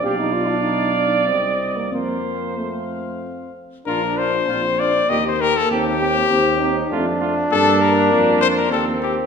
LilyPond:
<<
  \new Staff \with { instrumentName = "Cornet" } { \time 3/4 \key bes \major \tempo 4 = 98 f''2 ees''4 | f''4 f''4. r8 | bes'8 c''4 d''8 ees''16 c''16 bes'16 a'16 | g'2~ g'8 r8 |
a'8 bes'4 c''16 bes'16 a'8 g'8 | }
  \new Staff \with { instrumentName = "Flugelhorn" } { \time 3/4 \key bes \major d''2. | c''2~ c''8 r8 | f'8 f'8 f'8 f'8 g'8 g'8 | g'8 g'8 g'8 g'8 f'8 f'8 |
d'2 c'4 | }
  \new Staff \with { instrumentName = "Trombone" } { \time 3/4 \key bes \major g'16 ees'16 f'16 d'16 ees'8 d'8 c'8. bes16 | bes4 a4 r4 | d'4 c'4 bes4~ | bes4 c'8 ees'8 d'4~ |
d'2 c'4 | }
  \new Staff \with { instrumentName = "French horn" } { \time 3/4 \key bes \major d'2 c'4 | c'4 c'4. r8 | d'8 d'8 d'8 d'8 bes8 bes8 | c'8 c'8 c'8 c'8 a8 a8 |
bes2 bes4 | }
  \new Staff \with { instrumentName = "Tuba" } { \clef bass \time 3/4 \key bes \major b,,2 c,4 | f,2~ f,8 r8 | bes,,4 bes,,4 ees,4 | ees,4 ees,4 f,4 |
g,4 f,4 ees,4 | }
>>